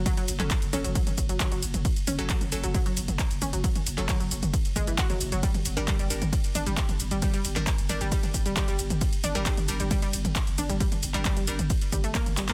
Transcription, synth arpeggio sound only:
0, 0, Header, 1, 2, 480
1, 0, Start_track
1, 0, Tempo, 447761
1, 62, Time_signature, 4, 2, 24, 8
1, 13436, End_track
2, 0, Start_track
2, 0, Title_t, "Synth arpeggio sound"
2, 0, Program_c, 0, 84
2, 64, Note_on_c, 0, 54, 100
2, 119, Note_off_c, 0, 54, 0
2, 186, Note_on_c, 0, 54, 79
2, 239, Note_off_c, 0, 54, 0
2, 784, Note_on_c, 0, 61, 76
2, 867, Note_off_c, 0, 61, 0
2, 906, Note_on_c, 0, 54, 77
2, 986, Note_off_c, 0, 54, 0
2, 1023, Note_on_c, 0, 54, 80
2, 1056, Note_off_c, 0, 54, 0
2, 1385, Note_on_c, 0, 54, 78
2, 1439, Note_off_c, 0, 54, 0
2, 1503, Note_on_c, 0, 54, 104
2, 1559, Note_off_c, 0, 54, 0
2, 1625, Note_on_c, 0, 54, 76
2, 1679, Note_off_c, 0, 54, 0
2, 2223, Note_on_c, 0, 61, 77
2, 2307, Note_off_c, 0, 61, 0
2, 2345, Note_on_c, 0, 54, 81
2, 2426, Note_off_c, 0, 54, 0
2, 2462, Note_on_c, 0, 54, 85
2, 2496, Note_off_c, 0, 54, 0
2, 2825, Note_on_c, 0, 54, 76
2, 2879, Note_off_c, 0, 54, 0
2, 2943, Note_on_c, 0, 54, 99
2, 2998, Note_off_c, 0, 54, 0
2, 3065, Note_on_c, 0, 54, 78
2, 3119, Note_off_c, 0, 54, 0
2, 3663, Note_on_c, 0, 61, 78
2, 3746, Note_off_c, 0, 61, 0
2, 3784, Note_on_c, 0, 54, 74
2, 3865, Note_off_c, 0, 54, 0
2, 3902, Note_on_c, 0, 54, 82
2, 3936, Note_off_c, 0, 54, 0
2, 4264, Note_on_c, 0, 54, 77
2, 4318, Note_off_c, 0, 54, 0
2, 4381, Note_on_c, 0, 54, 106
2, 4438, Note_off_c, 0, 54, 0
2, 4503, Note_on_c, 0, 54, 75
2, 4558, Note_off_c, 0, 54, 0
2, 5102, Note_on_c, 0, 56, 98
2, 5158, Note_off_c, 0, 56, 0
2, 5224, Note_on_c, 0, 52, 78
2, 5278, Note_off_c, 0, 52, 0
2, 5342, Note_on_c, 0, 66, 106
2, 5426, Note_off_c, 0, 66, 0
2, 5464, Note_on_c, 0, 54, 77
2, 5497, Note_off_c, 0, 54, 0
2, 5704, Note_on_c, 0, 54, 73
2, 5758, Note_off_c, 0, 54, 0
2, 5822, Note_on_c, 0, 55, 79
2, 5855, Note_off_c, 0, 55, 0
2, 6185, Note_on_c, 0, 55, 79
2, 6239, Note_off_c, 0, 55, 0
2, 6303, Note_on_c, 0, 55, 103
2, 6358, Note_off_c, 0, 55, 0
2, 6424, Note_on_c, 0, 55, 75
2, 6478, Note_off_c, 0, 55, 0
2, 7023, Note_on_c, 0, 62, 76
2, 7106, Note_off_c, 0, 62, 0
2, 7144, Note_on_c, 0, 55, 77
2, 7225, Note_off_c, 0, 55, 0
2, 7262, Note_on_c, 0, 55, 85
2, 7296, Note_off_c, 0, 55, 0
2, 7625, Note_on_c, 0, 55, 77
2, 7679, Note_off_c, 0, 55, 0
2, 7742, Note_on_c, 0, 55, 101
2, 7798, Note_off_c, 0, 55, 0
2, 7865, Note_on_c, 0, 55, 80
2, 7919, Note_off_c, 0, 55, 0
2, 8463, Note_on_c, 0, 62, 77
2, 8546, Note_off_c, 0, 62, 0
2, 8586, Note_on_c, 0, 55, 79
2, 8666, Note_off_c, 0, 55, 0
2, 8704, Note_on_c, 0, 55, 83
2, 8737, Note_off_c, 0, 55, 0
2, 9066, Note_on_c, 0, 55, 77
2, 9119, Note_off_c, 0, 55, 0
2, 9184, Note_on_c, 0, 55, 108
2, 9239, Note_off_c, 0, 55, 0
2, 9305, Note_on_c, 0, 55, 76
2, 9359, Note_off_c, 0, 55, 0
2, 9903, Note_on_c, 0, 62, 77
2, 9987, Note_off_c, 0, 62, 0
2, 10026, Note_on_c, 0, 55, 81
2, 10106, Note_off_c, 0, 55, 0
2, 10144, Note_on_c, 0, 55, 87
2, 10177, Note_off_c, 0, 55, 0
2, 10505, Note_on_c, 0, 55, 77
2, 10559, Note_off_c, 0, 55, 0
2, 10623, Note_on_c, 0, 55, 101
2, 10678, Note_off_c, 0, 55, 0
2, 10745, Note_on_c, 0, 55, 79
2, 10799, Note_off_c, 0, 55, 0
2, 11343, Note_on_c, 0, 62, 76
2, 11427, Note_off_c, 0, 62, 0
2, 11465, Note_on_c, 0, 55, 74
2, 11546, Note_off_c, 0, 55, 0
2, 11583, Note_on_c, 0, 55, 81
2, 11616, Note_off_c, 0, 55, 0
2, 11945, Note_on_c, 0, 55, 81
2, 11999, Note_off_c, 0, 55, 0
2, 12064, Note_on_c, 0, 55, 106
2, 12119, Note_off_c, 0, 55, 0
2, 12187, Note_on_c, 0, 55, 75
2, 12239, Note_off_c, 0, 55, 0
2, 12784, Note_on_c, 0, 55, 79
2, 12817, Note_off_c, 0, 55, 0
2, 12906, Note_on_c, 0, 57, 79
2, 12938, Note_off_c, 0, 57, 0
2, 13024, Note_on_c, 0, 58, 105
2, 13079, Note_off_c, 0, 58, 0
2, 13265, Note_on_c, 0, 55, 75
2, 13320, Note_off_c, 0, 55, 0
2, 13388, Note_on_c, 0, 58, 77
2, 13436, Note_off_c, 0, 58, 0
2, 13436, End_track
0, 0, End_of_file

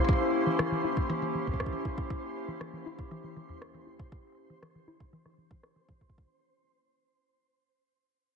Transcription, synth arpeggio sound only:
0, 0, Header, 1, 2, 480
1, 0, Start_track
1, 0, Tempo, 504202
1, 83, Time_signature, 4, 2, 24, 8
1, 7956, End_track
2, 0, Start_track
2, 0, Title_t, "Synth arpeggio sound"
2, 0, Program_c, 0, 84
2, 443, Note_on_c, 0, 52, 76
2, 481, Note_off_c, 0, 52, 0
2, 563, Note_on_c, 0, 52, 87
2, 660, Note_off_c, 0, 52, 0
2, 683, Note_on_c, 0, 52, 79
2, 747, Note_off_c, 0, 52, 0
2, 802, Note_on_c, 0, 64, 104
2, 867, Note_off_c, 0, 64, 0
2, 1042, Note_on_c, 0, 52, 98
2, 1139, Note_off_c, 0, 52, 0
2, 1162, Note_on_c, 0, 52, 77
2, 1259, Note_off_c, 0, 52, 0
2, 1282, Note_on_c, 0, 52, 76
2, 1321, Note_off_c, 0, 52, 0
2, 1402, Note_on_c, 0, 40, 74
2, 1499, Note_off_c, 0, 40, 0
2, 1643, Note_on_c, 0, 52, 73
2, 1707, Note_off_c, 0, 52, 0
2, 1763, Note_on_c, 0, 64, 76
2, 1827, Note_off_c, 0, 64, 0
2, 2363, Note_on_c, 0, 52, 79
2, 2401, Note_off_c, 0, 52, 0
2, 2483, Note_on_c, 0, 52, 85
2, 2579, Note_off_c, 0, 52, 0
2, 2602, Note_on_c, 0, 52, 77
2, 2667, Note_off_c, 0, 52, 0
2, 2723, Note_on_c, 0, 64, 102
2, 2787, Note_off_c, 0, 64, 0
2, 2963, Note_on_c, 0, 52, 100
2, 3059, Note_off_c, 0, 52, 0
2, 3083, Note_on_c, 0, 52, 79
2, 3180, Note_off_c, 0, 52, 0
2, 3203, Note_on_c, 0, 52, 80
2, 3242, Note_off_c, 0, 52, 0
2, 3323, Note_on_c, 0, 40, 74
2, 3420, Note_off_c, 0, 40, 0
2, 3563, Note_on_c, 0, 52, 75
2, 3627, Note_off_c, 0, 52, 0
2, 3683, Note_on_c, 0, 64, 78
2, 3747, Note_off_c, 0, 64, 0
2, 4283, Note_on_c, 0, 52, 78
2, 4322, Note_off_c, 0, 52, 0
2, 4403, Note_on_c, 0, 52, 84
2, 4500, Note_off_c, 0, 52, 0
2, 4523, Note_on_c, 0, 52, 80
2, 4587, Note_off_c, 0, 52, 0
2, 4643, Note_on_c, 0, 64, 98
2, 4707, Note_off_c, 0, 64, 0
2, 4883, Note_on_c, 0, 52, 96
2, 4980, Note_off_c, 0, 52, 0
2, 5003, Note_on_c, 0, 52, 76
2, 5099, Note_off_c, 0, 52, 0
2, 5123, Note_on_c, 0, 52, 73
2, 5219, Note_off_c, 0, 52, 0
2, 5243, Note_on_c, 0, 52, 74
2, 5281, Note_off_c, 0, 52, 0
2, 5483, Note_on_c, 0, 52, 74
2, 5521, Note_off_c, 0, 52, 0
2, 5603, Note_on_c, 0, 52, 73
2, 5641, Note_off_c, 0, 52, 0
2, 7956, End_track
0, 0, End_of_file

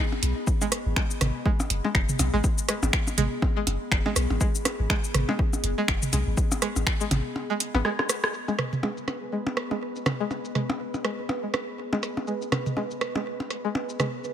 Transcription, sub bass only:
0, 0, Header, 1, 2, 480
1, 0, Start_track
1, 0, Key_signature, 5, "minor"
1, 0, Tempo, 491803
1, 461, Time_signature, 4, 2, 24, 8
1, 13991, End_track
2, 0, Start_track
2, 0, Title_t, "Sub bass"
2, 0, Program_c, 0, 38
2, 222, Note_on_c, 0, 35, 96
2, 325, Note_off_c, 0, 35, 0
2, 840, Note_on_c, 0, 32, 102
2, 915, Note_off_c, 0, 32, 0
2, 1182, Note_on_c, 0, 32, 87
2, 1285, Note_off_c, 0, 32, 0
2, 1661, Note_on_c, 0, 30, 98
2, 1764, Note_off_c, 0, 30, 0
2, 1901, Note_on_c, 0, 30, 93
2, 2004, Note_off_c, 0, 30, 0
2, 2141, Note_on_c, 0, 35, 87
2, 2245, Note_off_c, 0, 35, 0
2, 2279, Note_on_c, 0, 32, 104
2, 2355, Note_off_c, 0, 32, 0
2, 2759, Note_on_c, 0, 32, 101
2, 2835, Note_off_c, 0, 32, 0
2, 3100, Note_on_c, 0, 32, 87
2, 3204, Note_off_c, 0, 32, 0
2, 3581, Note_on_c, 0, 30, 100
2, 3684, Note_off_c, 0, 30, 0
2, 3821, Note_on_c, 0, 30, 97
2, 3925, Note_off_c, 0, 30, 0
2, 4061, Note_on_c, 0, 35, 86
2, 4165, Note_off_c, 0, 35, 0
2, 4200, Note_on_c, 0, 32, 104
2, 4275, Note_off_c, 0, 32, 0
2, 4681, Note_on_c, 0, 32, 101
2, 4755, Note_off_c, 0, 32, 0
2, 5021, Note_on_c, 0, 32, 90
2, 5124, Note_off_c, 0, 32, 0
2, 5501, Note_on_c, 0, 30, 98
2, 5604, Note_off_c, 0, 30, 0
2, 5741, Note_on_c, 0, 30, 94
2, 5845, Note_off_c, 0, 30, 0
2, 5981, Note_on_c, 0, 35, 88
2, 6084, Note_off_c, 0, 35, 0
2, 6120, Note_on_c, 0, 32, 105
2, 6195, Note_off_c, 0, 32, 0
2, 6600, Note_on_c, 0, 32, 102
2, 6675, Note_off_c, 0, 32, 0
2, 6940, Note_on_c, 0, 32, 91
2, 7044, Note_off_c, 0, 32, 0
2, 7559, Note_on_c, 0, 32, 102
2, 7635, Note_off_c, 0, 32, 0
2, 13991, End_track
0, 0, End_of_file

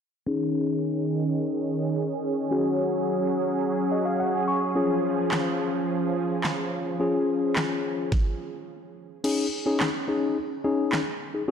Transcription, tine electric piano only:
0, 0, Header, 1, 2, 480
1, 0, Start_track
1, 0, Tempo, 560748
1, 232, Time_signature, 4, 2, 24, 8
1, 9853, End_track
2, 0, Start_track
2, 0, Title_t, "Tine electric piano"
2, 0, Program_c, 0, 4
2, 228, Note_on_c, 0, 61, 67
2, 232, Note_on_c, 0, 63, 61
2, 237, Note_on_c, 0, 68, 77
2, 2116, Note_off_c, 0, 61, 0
2, 2118, Note_off_c, 0, 63, 0
2, 2120, Note_off_c, 0, 68, 0
2, 2148, Note_on_c, 0, 61, 71
2, 2152, Note_on_c, 0, 66, 64
2, 2157, Note_on_c, 0, 68, 77
2, 3352, Note_on_c, 0, 75, 67
2, 3463, Note_off_c, 0, 75, 0
2, 3470, Note_on_c, 0, 77, 67
2, 3583, Note_off_c, 0, 77, 0
2, 3593, Note_on_c, 0, 78, 69
2, 3816, Note_off_c, 0, 78, 0
2, 3832, Note_on_c, 0, 85, 69
2, 4036, Note_off_c, 0, 61, 0
2, 4038, Note_off_c, 0, 66, 0
2, 4040, Note_off_c, 0, 68, 0
2, 4055, Note_off_c, 0, 85, 0
2, 4068, Note_on_c, 0, 61, 70
2, 4073, Note_on_c, 0, 65, 61
2, 4077, Note_on_c, 0, 68, 79
2, 5956, Note_off_c, 0, 61, 0
2, 5958, Note_off_c, 0, 65, 0
2, 5960, Note_off_c, 0, 68, 0
2, 5986, Note_on_c, 0, 61, 71
2, 5991, Note_on_c, 0, 65, 64
2, 5996, Note_on_c, 0, 68, 78
2, 6930, Note_off_c, 0, 61, 0
2, 6932, Note_off_c, 0, 65, 0
2, 6935, Note_off_c, 0, 68, 0
2, 7910, Note_on_c, 0, 61, 80
2, 7913, Note_on_c, 0, 63, 72
2, 7914, Note_on_c, 0, 68, 85
2, 8093, Note_off_c, 0, 61, 0
2, 8094, Note_off_c, 0, 63, 0
2, 8095, Note_off_c, 0, 68, 0
2, 8269, Note_on_c, 0, 61, 87
2, 8271, Note_on_c, 0, 63, 79
2, 8274, Note_on_c, 0, 68, 93
2, 8452, Note_off_c, 0, 61, 0
2, 8453, Note_off_c, 0, 63, 0
2, 8455, Note_off_c, 0, 68, 0
2, 8628, Note_on_c, 0, 61, 79
2, 8631, Note_on_c, 0, 63, 74
2, 8632, Note_on_c, 0, 68, 88
2, 8872, Note_off_c, 0, 61, 0
2, 8874, Note_off_c, 0, 63, 0
2, 8875, Note_off_c, 0, 68, 0
2, 9110, Note_on_c, 0, 61, 85
2, 9110, Note_on_c, 0, 63, 75
2, 9113, Note_on_c, 0, 68, 88
2, 9414, Note_off_c, 0, 61, 0
2, 9414, Note_off_c, 0, 63, 0
2, 9415, Note_off_c, 0, 68, 0
2, 9708, Note_on_c, 0, 63, 86
2, 9712, Note_on_c, 0, 68, 100
2, 9771, Note_off_c, 0, 63, 0
2, 9773, Note_off_c, 0, 68, 0
2, 9853, End_track
0, 0, End_of_file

